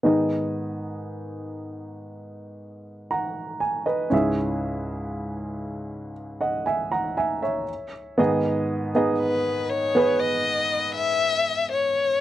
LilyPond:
<<
  \new Staff \with { instrumentName = "Violin" } { \time 4/4 \key gis \minor \tempo 4 = 59 r1 | r1 | r4 b'8 cis''8 dis''8. e''8. cis''8 | }
  \new Staff \with { instrumentName = "Grand piano" } { \time 4/4 \key gis \minor << { r2. <fis'' ais''>8 gis''16 <b' dis''>16~ | <b' dis''>16 r2 <dis'' fis''>16 <e'' gis''>16 <fis'' ais''>16 <e'' gis''>16 <cis'' e''>8 r16 | r1 | } \\ { <b dis' gis' dis''>1 | <cis' e' gis' e''>2.~ <cis' e' gis' e''>8 r8 | <b dis' gis' dis''>8. <b dis' gis' dis''>4 <b gis' b'>2 r16 | } >> }
  \new Staff \with { instrumentName = "Grand piano" } { \clef bass \time 4/4 \key gis \minor <gis, dis>1 | <cis, gis,>2.~ <cis, gis,>8 r8 | <gis, dis>1 | }
>>